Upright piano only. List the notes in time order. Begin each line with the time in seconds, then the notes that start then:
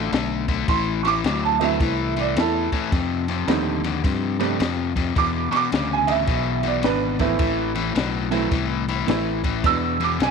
Already playing: A4
0.69 C6
1.03 C#6
1.07 D6
1.45 A5
1.60 E3 A3 C4 E4 D#5
1.64 E5
2.20 D5
2.39 E4 A4
3.47 G3 A3 C4 D#4
4.39 G3 A3 C4 D4
5.18 D6
5.51 C#6
5.56 D6
5.93 G#5
6.07 D#5
6.11 E5
6.68 D5
6.85 D4 B4
7.20 E3 A3 C4 E4
8.31 E3 A3 C4 E4
9.07 E3 A3 C4 E4
9.63 E3 G#3 B3 D4 E6
10.04 D6
10.23 G#5